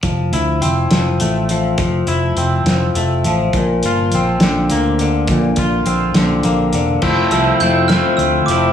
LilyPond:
<<
  \new Staff \with { instrumentName = "Glockenspiel" } { \time 6/8 \key f \major \tempo 4. = 69 r2. | r2. | r2. | r2. |
r8 e'''8 g'''8 f'''8 e'''8 d'''8 | }
  \new Staff \with { instrumentName = "Clean electric guitar" } { \time 6/8 \key f \major f8 e'8 c'8 f8 a8 f8 | f8 e'8 c'8 f8 a8 f8 | bes,8 f'8 c'8 d8 bes8 d8 | bes,8 f'8 c'8 d8 bes8 d8 |
<f a c' e'>8 <f a c' e'>8 <f a c' e'>8 <f a c' e'>4 <f a c' e'>8 | }
  \new Staff \with { instrumentName = "Fingered electric bass" } { \clef bass \time 6/8 \key f \major f,,8 d,8 f,,8 f,,8 a,,4 | f,,8 f,,8 f,,8 f,,8 f,,8 a,,8 | bes,,8 g,,8 bes,,8 bes,,8 d,4 | bes,,8 bes,,8 bes,,8 bes,,8 bes,,8 e,,8 |
f,,8 c,8 f,,4 d,8 f,,8 | }
  \new DrumStaff \with { instrumentName = "Drums" } \drummode { \time 6/8 <hh bd>8 hh8 hh8 <hh sn>8 hh8 hh8 | <hh bd>8 hh8 hh8 <hh sn>8 hh8 hh8 | <hh bd>8 hh8 hh8 <hh sn>8 hh8 hh8 | <hh bd>8 <hh bd>8 hh8 <hh sn>8 hh8 hh8 |
<cymc bd>8 hh8 hh8 <hh sn>8 hh8 hh8 | }
>>